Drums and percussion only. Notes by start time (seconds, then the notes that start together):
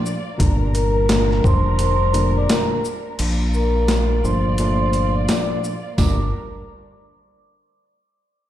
0.06 shaker
0.40 kick, closed hi-hat
0.75 closed hi-hat, shaker
1.09 snare, closed hi-hat, tambourine
1.31 snare
1.44 kick, shaker
1.79 closed hi-hat
2.14 closed hi-hat, shaker
2.49 snare, closed hi-hat, tambourine
2.85 shaker
3.19 closed hi-hat, crash
3.54 shaker
3.88 snare, closed hi-hat, tambourine
4.25 shaker
4.58 closed hi-hat
4.93 closed hi-hat, shaker
5.29 snare, closed hi-hat, tambourine
5.64 shaker
5.98 kick, snare, tambourine